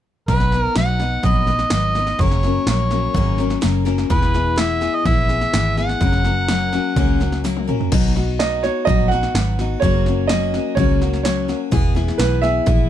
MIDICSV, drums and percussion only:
0, 0, Header, 1, 2, 480
1, 0, Start_track
1, 0, Key_signature, 5, "major"
1, 0, Tempo, 476190
1, 285, Time_signature, 4, 2, 24, 8
1, 12997, End_track
2, 0, Start_track
2, 0, Title_t, "Drums"
2, 286, Note_on_c, 9, 36, 85
2, 286, Note_on_c, 9, 38, 26
2, 387, Note_off_c, 9, 36, 0
2, 387, Note_off_c, 9, 38, 0
2, 404, Note_on_c, 9, 38, 29
2, 505, Note_off_c, 9, 38, 0
2, 525, Note_on_c, 9, 38, 30
2, 626, Note_off_c, 9, 38, 0
2, 762, Note_on_c, 9, 38, 92
2, 762, Note_on_c, 9, 44, 70
2, 863, Note_off_c, 9, 38, 0
2, 863, Note_off_c, 9, 44, 0
2, 1004, Note_on_c, 9, 38, 27
2, 1105, Note_off_c, 9, 38, 0
2, 1241, Note_on_c, 9, 38, 31
2, 1245, Note_on_c, 9, 36, 90
2, 1342, Note_off_c, 9, 38, 0
2, 1346, Note_off_c, 9, 36, 0
2, 1481, Note_on_c, 9, 38, 29
2, 1582, Note_off_c, 9, 38, 0
2, 1602, Note_on_c, 9, 38, 28
2, 1702, Note_off_c, 9, 38, 0
2, 1717, Note_on_c, 9, 38, 101
2, 1717, Note_on_c, 9, 44, 76
2, 1818, Note_off_c, 9, 38, 0
2, 1818, Note_off_c, 9, 44, 0
2, 1967, Note_on_c, 9, 38, 28
2, 2068, Note_off_c, 9, 38, 0
2, 2084, Note_on_c, 9, 38, 28
2, 2185, Note_off_c, 9, 38, 0
2, 2204, Note_on_c, 9, 38, 29
2, 2209, Note_on_c, 9, 36, 91
2, 2305, Note_off_c, 9, 38, 0
2, 2310, Note_off_c, 9, 36, 0
2, 2332, Note_on_c, 9, 38, 31
2, 2433, Note_off_c, 9, 38, 0
2, 2450, Note_on_c, 9, 38, 29
2, 2551, Note_off_c, 9, 38, 0
2, 2689, Note_on_c, 9, 38, 95
2, 2689, Note_on_c, 9, 44, 76
2, 2790, Note_off_c, 9, 38, 0
2, 2790, Note_off_c, 9, 44, 0
2, 2931, Note_on_c, 9, 38, 28
2, 3032, Note_off_c, 9, 38, 0
2, 3168, Note_on_c, 9, 38, 28
2, 3171, Note_on_c, 9, 36, 90
2, 3268, Note_off_c, 9, 38, 0
2, 3272, Note_off_c, 9, 36, 0
2, 3409, Note_on_c, 9, 38, 31
2, 3509, Note_off_c, 9, 38, 0
2, 3531, Note_on_c, 9, 38, 28
2, 3632, Note_off_c, 9, 38, 0
2, 3649, Note_on_c, 9, 38, 96
2, 3649, Note_on_c, 9, 44, 69
2, 3750, Note_off_c, 9, 38, 0
2, 3750, Note_off_c, 9, 44, 0
2, 3893, Note_on_c, 9, 38, 30
2, 3993, Note_off_c, 9, 38, 0
2, 4014, Note_on_c, 9, 38, 29
2, 4115, Note_off_c, 9, 38, 0
2, 4136, Note_on_c, 9, 36, 90
2, 4137, Note_on_c, 9, 38, 27
2, 4237, Note_off_c, 9, 36, 0
2, 4238, Note_off_c, 9, 38, 0
2, 4258, Note_on_c, 9, 38, 32
2, 4359, Note_off_c, 9, 38, 0
2, 4379, Note_on_c, 9, 38, 30
2, 4480, Note_off_c, 9, 38, 0
2, 4613, Note_on_c, 9, 38, 96
2, 4613, Note_on_c, 9, 44, 76
2, 4713, Note_off_c, 9, 38, 0
2, 4713, Note_off_c, 9, 44, 0
2, 4857, Note_on_c, 9, 38, 29
2, 4958, Note_off_c, 9, 38, 0
2, 5095, Note_on_c, 9, 36, 96
2, 5098, Note_on_c, 9, 38, 32
2, 5196, Note_off_c, 9, 36, 0
2, 5198, Note_off_c, 9, 38, 0
2, 5333, Note_on_c, 9, 38, 30
2, 5434, Note_off_c, 9, 38, 0
2, 5457, Note_on_c, 9, 38, 30
2, 5558, Note_off_c, 9, 38, 0
2, 5579, Note_on_c, 9, 38, 97
2, 5579, Note_on_c, 9, 44, 74
2, 5680, Note_off_c, 9, 38, 0
2, 5680, Note_off_c, 9, 44, 0
2, 5819, Note_on_c, 9, 38, 30
2, 5919, Note_off_c, 9, 38, 0
2, 5939, Note_on_c, 9, 38, 31
2, 6040, Note_off_c, 9, 38, 0
2, 6055, Note_on_c, 9, 36, 92
2, 6058, Note_on_c, 9, 38, 31
2, 6156, Note_off_c, 9, 36, 0
2, 6158, Note_off_c, 9, 38, 0
2, 6173, Note_on_c, 9, 38, 32
2, 6274, Note_off_c, 9, 38, 0
2, 6295, Note_on_c, 9, 38, 29
2, 6396, Note_off_c, 9, 38, 0
2, 6536, Note_on_c, 9, 38, 99
2, 6536, Note_on_c, 9, 44, 69
2, 6637, Note_off_c, 9, 38, 0
2, 6637, Note_off_c, 9, 44, 0
2, 6781, Note_on_c, 9, 38, 29
2, 6882, Note_off_c, 9, 38, 0
2, 7020, Note_on_c, 9, 36, 96
2, 7020, Note_on_c, 9, 38, 28
2, 7121, Note_off_c, 9, 36, 0
2, 7121, Note_off_c, 9, 38, 0
2, 7267, Note_on_c, 9, 38, 32
2, 7367, Note_off_c, 9, 38, 0
2, 7382, Note_on_c, 9, 38, 30
2, 7483, Note_off_c, 9, 38, 0
2, 7507, Note_on_c, 9, 38, 50
2, 7507, Note_on_c, 9, 44, 76
2, 7608, Note_off_c, 9, 38, 0
2, 7608, Note_off_c, 9, 44, 0
2, 7627, Note_on_c, 9, 48, 48
2, 7728, Note_off_c, 9, 48, 0
2, 7750, Note_on_c, 9, 45, 69
2, 7851, Note_off_c, 9, 45, 0
2, 7869, Note_on_c, 9, 43, 65
2, 7969, Note_off_c, 9, 43, 0
2, 7982, Note_on_c, 9, 38, 32
2, 7982, Note_on_c, 9, 49, 83
2, 7984, Note_on_c, 9, 36, 96
2, 8083, Note_off_c, 9, 38, 0
2, 8083, Note_off_c, 9, 49, 0
2, 8084, Note_off_c, 9, 36, 0
2, 8228, Note_on_c, 9, 38, 30
2, 8329, Note_off_c, 9, 38, 0
2, 8465, Note_on_c, 9, 38, 102
2, 8465, Note_on_c, 9, 44, 77
2, 8566, Note_off_c, 9, 38, 0
2, 8566, Note_off_c, 9, 44, 0
2, 8706, Note_on_c, 9, 38, 30
2, 8807, Note_off_c, 9, 38, 0
2, 8943, Note_on_c, 9, 36, 100
2, 8945, Note_on_c, 9, 38, 32
2, 9044, Note_off_c, 9, 36, 0
2, 9046, Note_off_c, 9, 38, 0
2, 9188, Note_on_c, 9, 38, 33
2, 9288, Note_off_c, 9, 38, 0
2, 9304, Note_on_c, 9, 38, 31
2, 9405, Note_off_c, 9, 38, 0
2, 9425, Note_on_c, 9, 38, 104
2, 9425, Note_on_c, 9, 44, 77
2, 9526, Note_off_c, 9, 38, 0
2, 9526, Note_off_c, 9, 44, 0
2, 9666, Note_on_c, 9, 38, 32
2, 9767, Note_off_c, 9, 38, 0
2, 9900, Note_on_c, 9, 36, 94
2, 9903, Note_on_c, 9, 38, 30
2, 10001, Note_off_c, 9, 36, 0
2, 10004, Note_off_c, 9, 38, 0
2, 10142, Note_on_c, 9, 38, 31
2, 10243, Note_off_c, 9, 38, 0
2, 10376, Note_on_c, 9, 38, 96
2, 10376, Note_on_c, 9, 44, 74
2, 10477, Note_off_c, 9, 38, 0
2, 10477, Note_off_c, 9, 44, 0
2, 10623, Note_on_c, 9, 38, 31
2, 10724, Note_off_c, 9, 38, 0
2, 10857, Note_on_c, 9, 36, 105
2, 10861, Note_on_c, 9, 38, 34
2, 10958, Note_off_c, 9, 36, 0
2, 10962, Note_off_c, 9, 38, 0
2, 11104, Note_on_c, 9, 38, 32
2, 11205, Note_off_c, 9, 38, 0
2, 11223, Note_on_c, 9, 38, 31
2, 11324, Note_off_c, 9, 38, 0
2, 11340, Note_on_c, 9, 38, 96
2, 11340, Note_on_c, 9, 44, 80
2, 11441, Note_off_c, 9, 38, 0
2, 11441, Note_off_c, 9, 44, 0
2, 11582, Note_on_c, 9, 38, 33
2, 11683, Note_off_c, 9, 38, 0
2, 11814, Note_on_c, 9, 36, 101
2, 11816, Note_on_c, 9, 38, 30
2, 11915, Note_off_c, 9, 36, 0
2, 11917, Note_off_c, 9, 38, 0
2, 12059, Note_on_c, 9, 38, 31
2, 12160, Note_off_c, 9, 38, 0
2, 12180, Note_on_c, 9, 38, 29
2, 12281, Note_off_c, 9, 38, 0
2, 12293, Note_on_c, 9, 38, 108
2, 12293, Note_on_c, 9, 44, 74
2, 12394, Note_off_c, 9, 38, 0
2, 12394, Note_off_c, 9, 44, 0
2, 12533, Note_on_c, 9, 38, 30
2, 12634, Note_off_c, 9, 38, 0
2, 12767, Note_on_c, 9, 38, 33
2, 12769, Note_on_c, 9, 36, 103
2, 12867, Note_off_c, 9, 38, 0
2, 12870, Note_off_c, 9, 36, 0
2, 12997, End_track
0, 0, End_of_file